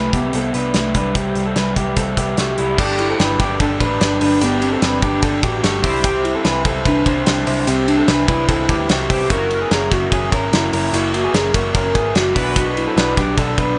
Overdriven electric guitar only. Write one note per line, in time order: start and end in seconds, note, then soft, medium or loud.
0.00 0.13 C3 medium
0.00 0.13 G3 medium
0.00 0.12 A3 medium
0.00 0.11 E4 medium
0.12 0.32 G3 soft
0.12 0.33 A3 soft
0.12 0.33 E4 medium
0.32 0.54 C3 medium
0.32 0.54 G3 soft
0.32 0.53 A3 medium
0.32 0.52 E4 medium
0.53 0.74 G3 soft
0.53 0.74 A3 soft
0.53 0.74 E4 medium
0.75 0.95 C3 medium
0.75 0.95 G3 medium
0.75 0.94 A3 medium
0.75 0.93 E4 medium
0.94 1.14 G3 soft
0.94 1.14 A3 soft
0.94 1.15 E4 medium
1.15 1.36 C3 medium
1.15 1.36 G3 medium
1.15 1.35 A3 medium
1.15 1.34 E4 medium
1.35 1.55 G3 soft
1.35 1.55 A3 soft
1.35 1.56 E4 soft
1.56 1.76 C3 medium
1.56 1.77 G3 medium
1.56 1.76 A3 medium
1.56 1.75 E4 medium
1.76 1.96 G3 soft
1.76 1.96 A3 soft
1.76 1.97 E4 medium
1.96 2.17 C3 medium
1.96 2.17 G3 medium
1.96 2.16 A3 medium
1.96 2.15 E4 medium
2.16 2.37 G3 soft
2.16 2.37 A3 soft
2.16 2.37 E4 medium
2.38 2.58 C3 medium
2.38 2.58 G3 medium
2.38 2.58 A3 medium
2.38 2.57 E4 medium
2.58 2.77 G3 soft
2.58 2.78 A3 soft
2.58 2.78 E4 medium
2.78 2.99 G3 medium
2.78 2.99 A3 medium
2.78 2.99 D4 medium
2.78 2.98 G4 loud
2.99 3.19 A3 soft
2.99 3.20 D4 medium
2.99 3.19 G4 soft
3.19 3.40 G3 medium
3.19 3.40 A3 medium
3.19 3.39 D4 medium
3.19 3.38 G4 medium
3.40 3.59 A3 soft
3.40 3.60 D4 medium
3.40 3.60 G4 medium
3.60 3.80 G3 medium
3.60 3.81 A3 medium
3.60 3.80 D4 medium
3.60 3.79 G4 medium
3.80 4.00 A3 soft
3.80 4.01 D4 medium
3.80 4.01 G4 medium
4.00 4.21 G3 medium
4.00 4.21 A3 medium
4.00 4.21 D4 medium
4.00 4.20 G4 medium
4.21 4.42 A3 soft
4.21 4.42 D4 medium
4.21 4.41 G4 medium
4.42 4.62 G3 medium
4.42 4.63 A3 medium
4.42 4.62 D4 medium
4.42 4.60 G4 medium
4.62 4.82 A3 soft
4.62 4.83 D4 medium
4.62 4.82 G4 medium
4.82 5.03 G3 medium
4.82 5.03 A3 medium
4.82 5.02 D4 medium
4.82 5.01 G4 medium
5.02 5.22 A3 medium
5.02 5.22 D4 medium
5.02 5.23 G4 medium
5.22 5.43 G3 medium
5.22 5.43 A3 medium
5.22 5.42 D4 medium
5.22 5.41 G4 medium
5.42 5.62 A3 soft
5.42 5.63 D4 medium
5.42 5.63 G4 medium
5.62 5.83 G3 medium
5.62 5.84 A3 medium
5.62 5.83 D4 medium
5.62 5.82 G4 medium
5.83 6.03 G3 medium
5.83 6.03 C4 medium
5.83 6.03 E4 medium
6.03 6.24 C3 medium
6.03 6.24 G3 medium
6.03 6.23 C4 medium
6.03 6.22 E4 medium
6.23 6.43 G3 soft
6.23 6.44 C4 medium
6.23 6.44 E4 medium
6.44 6.65 C3 medium
6.44 6.65 G3 medium
6.44 6.64 C4 medium
6.44 6.63 E4 medium
6.64 6.84 G3 soft
6.64 6.85 C4 medium
6.64 6.85 E4 medium
6.85 7.06 C3 medium
6.85 7.05 G3 medium
6.85 7.05 C4 medium
6.85 7.03 E4 loud
7.05 7.25 G3 soft
7.05 7.26 C4 medium
7.05 7.26 E4 medium
7.25 7.46 C3 medium
7.25 7.46 G3 medium
7.25 7.46 C4 medium
7.25 7.45 E4 medium
7.46 7.65 G3 medium
7.46 7.66 C4 soft
7.46 7.66 E4 medium
7.66 7.87 C3 medium
7.66 7.87 G3 medium
7.66 7.87 C4 loud
7.66 7.85 E4 medium
7.87 8.07 G3 soft
7.87 8.07 C4 soft
7.87 8.07 E4 medium
8.07 8.28 C3 medium
8.07 8.28 G3 medium
8.07 8.28 C4 medium
8.07 8.26 E4 medium
8.27 8.47 G3 soft
8.27 8.48 C4 soft
8.27 8.48 E4 medium
8.48 8.69 C3 medium
8.48 8.69 G3 medium
8.48 8.68 C4 medium
8.48 8.67 E4 medium
8.68 8.89 G3 medium
8.68 8.89 C4 medium
8.68 8.89 E4 medium
8.89 9.10 C3 medium
8.89 9.10 G3 medium
8.89 9.09 C4 medium
8.89 9.08 E4 medium
9.09 9.30 G3 soft
9.09 9.30 C4 medium
9.09 9.30 E4 medium
9.30 9.50 F#2 medium
9.30 9.51 C#3 medium
9.30 9.51 E3 medium
9.30 9.50 A#3 loud
9.30 9.49 E4 medium
9.50 9.70 E3 soft
9.50 9.70 A#3 soft
9.50 9.71 E4 medium
9.70 9.91 C#3 medium
9.70 9.91 E3 medium
9.70 9.91 A#3 medium
9.70 9.89 E4 medium
9.91 10.11 E3 soft
9.91 10.11 A#3 medium
9.91 10.11 E4 medium
10.11 10.32 F#2 medium
10.11 10.32 C#3 medium
10.11 10.32 E3 medium
10.11 10.31 A#3 medium
10.11 10.30 E4 medium
10.31 10.52 E3 soft
10.31 10.53 A#3 soft
10.31 10.52 E4 medium
10.52 10.73 C#3 medium
10.52 10.73 E3 medium
10.52 10.72 A#3 medium
10.52 10.71 E4 medium
10.72 10.92 E3 soft
10.72 10.93 A#3 soft
10.72 10.93 E4 medium
10.93 11.13 F#2 medium
10.93 11.13 C#3 medium
10.93 11.14 E3 medium
10.93 11.13 A#3 medium
10.93 11.12 E4 loud
11.13 11.32 E3 soft
11.13 11.33 A#3 medium
11.13 11.34 E4 medium
11.33 11.54 C#3 medium
11.33 11.54 E3 medium
11.33 11.53 A#3 medium
11.33 11.52 E4 medium
11.53 11.73 E3 medium
11.53 11.74 A#3 medium
11.53 11.74 E4 medium
11.73 11.94 F#2 medium
11.73 11.95 C#3 medium
11.73 11.95 E3 medium
11.73 11.94 A#3 medium
11.73 11.93 E4 medium
11.94 12.13 E3 soft
11.94 12.14 A#3 medium
11.94 12.15 E4 medium
12.14 12.35 C#3 medium
12.14 12.35 E3 medium
12.14 12.36 A#3 medium
12.14 12.34 E4 medium
12.35 12.55 F#3 medium
12.35 12.55 B3 medium
12.35 12.56 D4 medium
12.56 12.76 B2 medium
12.56 12.76 F#3 medium
12.56 12.75 B3 loud
12.56 12.74 D4 loud
12.75 12.95 F#3 soft
12.75 12.95 B3 soft
12.75 12.96 D4 medium
12.95 13.16 B2 medium
12.95 13.17 F#3 medium
12.95 13.16 B3 medium
12.95 13.15 D4 medium
13.16 13.36 F#3 medium
13.16 13.36 B3 medium
13.16 13.37 D4 medium
13.37 13.58 B2 medium
13.37 13.58 F#3 medium
13.37 13.57 B3 medium
13.37 13.56 D4 loud
13.57 13.77 F#3 medium
13.57 13.77 B3 medium
13.57 13.78 D4 medium